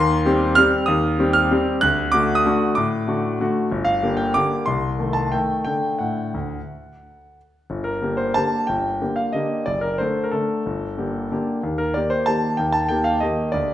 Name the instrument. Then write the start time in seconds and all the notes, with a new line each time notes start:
grand piano
Already playing: D#2 C6
0.25 G3 C4 G4
0.55 G3 C4 G4 F6
0.86 D#2 D#6
1.19 G3 C4 G4
1.33 F6
1.51 G3 C4 G4
1.81 D2 F#6
2.12 D3 A3 F#4 D6
2.35 D#6
2.45 D3 A3 F#4
2.75 A2 D6
3.07 D3 A3 F#4
3.40 D3 A3 F#4
3.72 G1
3.85 F5
4.03 D3 A#3 G4
4.17 G5
4.34 D3 A#3 G4 D6
4.66 C2 C6
4.99 D#3 A3 A4
5.13 A5
5.32 D#3 A3 A4 G5
5.65 D3 A3 A4 G5
5.99 A2 F#5
6.34 D2
7.70 G1
7.84 A#4
8.02 D3 A#3 G4
8.17 C5
8.34 D3 A#3 G4 A5
8.67 G1 G5
9.01 D3 A#3 G4
9.16 F5
9.33 D3 A#3 G4 D#5
9.66 F#1 D5
9.81 A#4
9.98 D3 A3 A4 C5
10.24 A#4
10.31 D3 A3 A4
10.66 G1
10.98 D3 A#3 G4
11.31 D3 A#3 G4
11.63 D#2
11.78 A#4
11.94 D#3 A#3 G4 D5
12.10 C5
12.26 D#3 A#3 G4 A5
12.57 D#2 G5
12.72 A5
12.89 D#3 A#3 G4 G5
13.04 F5
13.20 D#3 A#3 G4 D#5
13.52 D2 D5